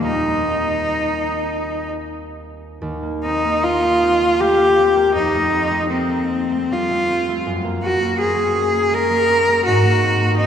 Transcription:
Already playing: D#2 G3 G4
0.00 C4 D#4
0.04 D#4 F4
2.82 D#2
3.03 A#3
3.24 C4 D#4
3.44 A#3
3.64 C4 F4
3.83 A#3
4.03 C4
4.21 A#3
4.40 A3 G4
4.59 A#3
4.78 C4
4.96 A#3
5.15 F2 D#4
5.34 A3
5.52 C4
5.71 A3
5.89 A#3 C4
6.09 A3
6.30 C4
6.51 A3
6.71 G3 F4
6.90 A3
7.09 C4
7.28 A3
7.46 F#2
7.64 A#3
7.83 C#4 F#4
8.01 A#3
8.19 C4 G#4
8.36 A#3
8.55 C#4
8.72 A#3
8.91 G#3 A#4
9.10 A#3
9.30 C#4
9.48 A#3
9.66 G#2 F#4
9.85 A#3
10.03 C4
10.21 A#3
10.38 C4 D#4

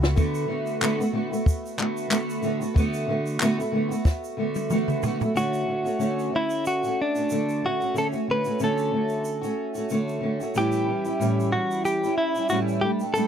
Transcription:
Already playing: C#2
0.02 A3 B3 F#4, snare, shaker
0.16 D3 A3 B3 F#4, kick, shaker
0.35 shaker
0.47 D3 A3 B3 F#4
0.66 shaker
0.81 D3 A3 B3 F#4, clap, shaker
0.98 A3 B3 F#4, shaker
1.12 D3 A3 B3 F#4
1.31 A3 B3 F#4, shaker
1.46 kick, shaker
1.66 shaker
1.77 D3 A3 B3 F#4, clap
1.97 shaker
2.09 D3 A3 B3 F#4, clap, shaker
2.30 shaker
2.42 D3 A3 B3 F#4, shaker
2.60 A3 B3 F#4, shaker
2.74 D3 A3 B3 F#4, kick, shaker
2.94 shaker
3.07 D3 A3 B3 F#4
3.26 shaker
3.40 D3 A3 B3 F#4, clap, shaker
3.58 A3 B3 F#4, shaker
3.72 D3 A3 B3 F#4
3.89 A3 B3 F#4, shaker
4.05 kick, snare, shaker
4.24 shaker
4.37 D3 A3 B3 F#4
4.55 high tom, shaker
4.70 D3 A3 B3 F#4, mid tom, shaker
4.88 mid tom, shaker
5.02 D3 A3 B3 F#4, floor tom, shaker
5.19 A3 B3 F#4, floor tom, shaker
5.34 D3 A3 C#4 F#4, shaker
5.54 shaker
5.66 D3 A3 C#4 F#4
5.83 A3 C#4 F#4, shaker
5.99 D3 A3 C#4 F#4, shaker
6.19 shaker
6.32 D3 A3 C#4 F#4
6.36 E4
6.50 shaker
6.65 F#4, shaker
6.83 A3 C#4 F#4, shaker
7.02 D4
7.15 A3 C#4 F#4, shaker
7.30 D3 A3 F#4, shaker
7.49 shaker
7.64 D3 A3 C#4 F#4
7.80 A3 C#4 F#4, shaker
7.94 D3 A3 C#4 F#4, shaker
7.98 A4
8.13 A3 C#4 F#4, shaker
8.28 D3 A3 C#4 F#4 B4
8.44 A3 C#4 F#4, shaker
8.59 D3 A3 C#4 F#4, shaker
8.64 A4
8.78 shaker
8.92 D3 A3 C#4 F#4
9.09 shaker
9.25 shaker
9.41 A3 C#4 F#4, shaker
9.75 A3 C#4 F#4, shaker
9.89 D3 A3 C#4 F#4, shaker
10.08 shaker
10.21 D3 A3 C#4 F#4
10.40 A3 C#4 F#4, shaker
10.54 A2 E3 G3 C#4 E4 G4, shaker
10.72 shaker
10.86 E3 G3 C#4 E4
11.05 G3 C#4 E4, shaker
11.19 A2 E3 G3 C#4 E4, shaker
11.40 shaker
11.52 E3 G3 C#4 E4 F#4
11.71 shaker
11.85 G4, shaker
12.04 G3 C#4 E4, shaker
12.18 E4
12.35 G3 C#4 E4, shaker
12.49 A2 E3 G3 C#4 E4 F#4, shaker
12.68 shaker
12.81 G3 A3 D4 G4
13.00 A3 D4 G4, shaker
13.14 G3 A3 D4 G4 A4, shaker

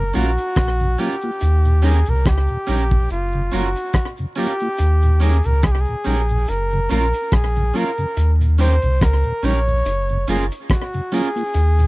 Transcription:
Already playing: F#1 A#4
0.14 A#1 F#3 A#3 C#4 F4 F#4 A#4, closed hi-hat, cabasa
0.37 closed hi-hat, cabasa
0.55 A#1, kick, cross-stick, closed hi-hat, cabasa
0.79 F#2 C#3, closed hi-hat, cabasa
0.98 F#3 A#3 C#4 F4 G4 A#4, open hi-hat, cabasa
1.21 A#3 F4, closed hi-hat, cabasa
1.40 D#2, closed hi-hat, cabasa
1.64 D#2 A#2, closed hi-hat, cabasa
1.82 G3 C#4 D#4 G4 G#4 A#4, closed hi-hat, cabasa
2.06 C2 D#2 A#2 A#4, closed hi-hat, cabasa
2.25 C#2 G4, kick, cross-stick, closed hi-hat, cabasa
2.47 D#2 A#2, cabasa
2.66 A#1 G3 C#4 D#4 G4 A#4, closed hi-hat, cabasa
2.91 D#2 A#2, kick, cabasa
3.09 F#1 F4, closed hi-hat, cabasa
3.32 F#2 C#3, cabasa
3.51 F#1 F#3 A#3 C#4 F4 F#4 A#4, closed hi-hat, cabasa
3.75 closed hi-hat, cabasa
3.93 kick, cross-stick, closed hi-hat, cabasa
4.17 F#2 C#3, closed hi-hat, cabasa
4.35 F#3 A#3 C#4 F4 G4 A#4, closed hi-hat, cabasa
4.60 A#3 F4, closed hi-hat, cabasa
4.77 D#2, closed hi-hat, cabasa
5.01 D#2 A#2, closed hi-hat, cabasa
5.19 G3 C#4 D#4 G4 G#4 A#4, closed hi-hat, cabasa
5.43 C#2 A#4, closed hi-hat, cabasa
5.47 D#2 A#2
5.62 C2 G#4, kick, cross-stick, closed hi-hat, cabasa
5.72 G4
5.81 G#4
5.85 D#2 A#2, cabasa
6.04 A#1 G3 C#4 D#4 G4 A#4, closed hi-hat, cabasa
6.29 D#2 A#2, cabasa
6.46 F#1 A#4, closed hi-hat, cabasa
6.71 F#2 C#3, cabasa
6.89 A#1 F#3 A#3 C#4 F4 A#4, closed hi-hat, cabasa
7.13 closed hi-hat, cabasa
7.31 A#1 G#4, kick, cross-stick, closed hi-hat, cabasa
7.55 F#2 C#3, closed hi-hat, cabasa
7.74 F#3 A#3 C#4 F4 A#4, open hi-hat, cabasa
7.98 F#2 C#3, closed hi-hat, cabasa
8.16 D#2, closed hi-hat, cabasa
8.41 D#2 A#2, closed hi-hat, cabasa
8.58 G3 C#4 D#4 G4 A#4 C5, closed hi-hat, cabasa
8.82 C2 D#2 A#2, closed hi-hat, cabasa
9.00 C#2 A#4, kick, cross-stick, closed hi-hat, cabasa
9.24 D#2 A#2, cabasa
9.43 A#1 G3 C#4 D#4 G4 A#4 C#5, closed hi-hat, cabasa
9.68 D#2 A#2, cabasa
9.85 F#1, closed hi-hat, cabasa
10.09 F#2 C#3, cabasa
10.27 F#1 F#3 A#3 C#4 F4 G#4 A#4, closed hi-hat, cabasa
10.51 closed hi-hat, cabasa
10.69 F#4, kick, cross-stick, closed hi-hat, cabasa
10.93 F#2 C#3, closed hi-hat, cabasa
11.11 F#3 A#3 C#4 F4 G#4 A#4, closed hi-hat, cabasa
11.36 A#3 F4, closed hi-hat, cabasa
11.54 D#2, closed hi-hat, cabasa
11.79 D#2 A#2, closed hi-hat, cabasa

